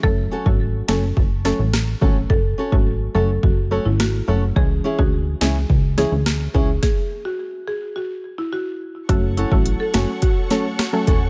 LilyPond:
<<
  \new Staff \with { instrumentName = "String section" } { \time 4/4 \key fis \minor \tempo 4 = 106 r1 | r1 | r1 | r1 |
<a' cis'' fis'' cis'''>1 | }
  \new Staff \with { instrumentName = "Marimba" } { \time 4/4 \key fis \minor a'8 r16 fis'8 r16 a'8 r8 a'16 r4 r16 | a'8 r16 fis'8 r16 a'8 fis'16 r8 e'16 fis'8. r16 | gis'8 r16 fis'8 r16 gis'8 r8 gis'16 r4 r16 | gis'8 r16 fis'8 r16 gis'8 fis'16 r8 e'16 fis'8. r16 |
fis'16 r16 e'16 fis'16 r16 a'16 fis'16 r16 fis'8. r8. a'16 r16 | }
  \new Staff \with { instrumentName = "Nylon-string guitar" } { \time 4/4 \key fis \minor r8 <cis' fis' a'>16 r8. <cis' fis' a'>16 r8. <cis' fis' a'>16 r8. <cis' fis' a'>16 r16 | r8 <cis' fis' a'>16 r8. <cis' fis' a'>16 r8. <cis' fis' a'>16 r8. <cis' fis' a'>16 r16 | r8 <cis' e' gis'>16 r8. <cis' e' gis'>16 r8. <cis' e' gis'>16 r8. <cis' e' gis'>16 r16 | r1 |
r8 <cis' fis' a'>16 r8. <cis' fis' a'>16 r8. <cis' fis' a'>16 r8. <cis' fis' a'>16 r16 | }
  \new Staff \with { instrumentName = "Synth pluck" } { \time 4/4 \key fis \minor <fis a cis' a'>8. <fis a cis' a'>16 r8 <fis a cis' a'>16 r8. <fis a cis' a'>16 r8. <fis a cis' a'>16 r16 | r8. <fis a cis' a'>16 r8 <fis a cis' a'>16 r8. <fis a cis' a'>16 r8. <fis a cis' a'>16 r16 | <e gis cis' gis'>8. <e gis cis' gis'>16 r8 <e gis cis' gis'>16 r8. <e gis cis' gis'>16 r8. <e gis cis' gis'>16 r16 | r1 |
<fis a cis' a'>8. <fis a cis' a'>16 r8 <fis a cis' a'>16 r8. <fis a cis' a'>16 r8 <fis a cis' a'>16 r8 | }
  \new Staff \with { instrumentName = "Analog synth bass" } { \clef bass \time 4/4 \key fis \minor fis,,8 r16 gis,,8. fis,,8 fis,,8. a,,8. gis,,8 | fis,,8 r16 gis,,8. fis,,8 fis,,8. gis,,8. fis,,8 | cis,8 r16 d,8. cis,8 cis,8. d,8. cis,8 | r1 |
fis,,8. a,,8 r16 fis,,16 r4. r16 e,,8 | }
  \new DrumStaff \with { instrumentName = "Drums" } \drummode { \time 4/4 bd8. bd16 r8 sn8 bd8 sn8 <ss sn>8 bd8 | bd8. bd16 r4 bd4 <ss sn>4 | bd8. bd16 r8 sn8 bd8 sn8 <ss sn>8 bd8 | <bd sn>4 r4 r4 r4 |
<hh bd>8 hh16 bd16 hh8 <hh sn>8 <hh bd>8 <hh sn>8 <hh ss sn>8 <hh bd>8 | }
>>